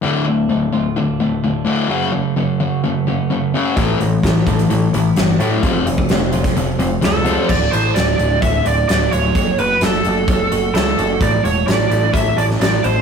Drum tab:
CC |----------------|----------------|----------------|----------------|
HH |----------------|----------------|x-x-x-xxx-x-x-x-|x-x-x-xxx-x-x-x-|
SD |----------------|----------------|----o-------o---|----o--o----o---|
BD |----------------|----------------|o---o-o---------|o--o---o--------|

CC |x---------------|----------------|----------------|
HH |--x-x-x-x-x-x-x-|x-x-x-x-x-x-x-x-|x-x-x-x-x-x-x-x-|
SD |----o-------o---|----o-------o---|----o------oo---|
BD |o-------o-------|o-------o-------|o-------o-------|